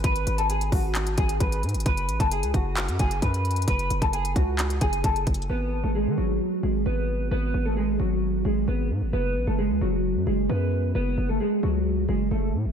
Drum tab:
HH |x-----x-----x-----x-----x-----x-----o-----------x-----x-----x-----x-----x-----x-----x--x--x--x--|x-----x-----x-----x-----x-----x-----x-----------x-----x-----x-----x-----x-----x-----x--x--x--x--|x-----x-----x-----x-----x-----x-----x-----------x-----x-----x-----x-----x-----x-----x---x---x---|------------------------------------------------------------------------------------------------|
CP |------------------------------------------------x-----------------------------------------------|------------------------------------------------x-----------------------------------------------|------------------------------------------------x-----------------------------------------------|------------------------------------------------------------------------------------------------|
BD |o-----------------------------------o-----------------------o-----------o-----------------------|o-----------------o-----------------o-----------------------o-----------o-----------------------|o-----------------o-----------------o-----------------------o-----------o-----------o-----------|------------------------------------------------------------------------------------------------|

HH |------------------------------------------------------------------------------------------------|------------------------------------------------------------------------------------------------|------------------------------------------------------------------------------------------------|
CP |------------------------------------------------------------------------------------------------|------------------------------------------------------------------------------------------------|------------------------------------------------------------------------------------------------|
BD |------------------------------------------------------------------------------------------------|------------------------------------------------------------------------------------------------|------------------------------------------------------------------------------------------------|